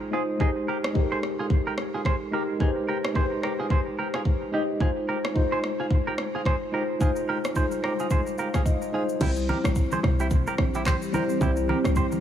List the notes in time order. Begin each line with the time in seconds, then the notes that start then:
Already playing: G#3 D#4 F4 G#4 C5
0.11 G#3 D#4 F4 G#4 C5
0.39 G#3 D#4 G4 G#4 A#4, kick
0.48 C5
0.68 G4 A#4
0.84 cross-stick
0.94 G#3 D#4 G4 A4, kick
1.03 A#4
1.12 G#4 C5
1.23 cross-stick
1.39 F4 G#4
1.50 kick
1.67 G4 A#4
1.78 cross-stick
1.94 F4 G#4
2.05 G#4 C5, kick, cross-stick
2.31 G#3 D#4 G4 A#4
2.59 G#3 D#4 G4 G#4 B4, kick
2.68 C5
2.89 G4 A#4
3.05 cross-stick
3.14 G#3 D#4 G4 G#4 B4 C5, kick
3.23 C5
3.43 G4 A#4, cross-stick
3.60 F4 G#4
3.70 G#4 C5, kick
3.99 G4 A#4
4.14 F4 G#4, cross-stick
4.25 kick
4.52 G#3 D#4 G4 D#5
4.79 G#3 D#4 F4 G#4 C5, kick
5.09 G4 A#4
5.25 cross-stick
5.34 G#3 D#4 F4 C5, kick
5.52 G#4 C5
5.64 cross-stick
5.80 F4 G#4
5.91 kick
6.07 G4 A#4
6.18 cross-stick
6.35 F4 G#4
6.45 G#4 C5, kick, cross-stick
6.72 G#3 D#4 F4 G4 A#4 C5
6.99 G#3 D#4 F4 G#4 C5, kick, shaker
7.16 shaker
7.29 G4 A#4
7.45 cross-stick, shaker
7.54 G3 D#4 F4 G#4 C5, kick, shaker
7.61 G#3
7.71 shaker
7.84 G4 A#4, cross-stick
7.99 F4 G#4, shaker
8.10 G#4 C5, kick, shaker
8.27 shaker
8.38 G4 A#4 F5, shaker
8.54 F4 G#4, kick, cross-stick, shaker
8.66 D#5, kick, shaker
8.82 shaker
8.92 G#3 D#4 F4 G#4 C5
9.09 shaker
9.20 C2 E3 G3 C4 E4 G4 A#4, kick, crash, shaker
9.29 C5
9.36 shaker
9.49 G4 A#4, high conga
9.64 A#1, cross-stick, shaker
9.75 kick, shaker
9.92 G#4 C5, high conga, shaker
10.03 C2, cross-stick, low conga
10.20 E4 G4, shaker
10.30 kick, low conga, shaker
10.47 G4 A#4, shaker
10.58 A#1, cross-stick
10.74 E4 G4, shaker
10.86 G4 C5, kick, cross-stick, clap, high conga, shaker
11.02 shaker
11.12 G3 C4 E4 G4 A#4 C5, high conga, shaker
11.29 shaker
11.40 C2 G3 C4 E4 G4 C5, kick, shaker
11.56 shaker
11.69 G4 A#4, high conga
11.84 C2, cross-stick, shaker
11.96 G4 C5, kick, shaker
12.12 high conga, shaker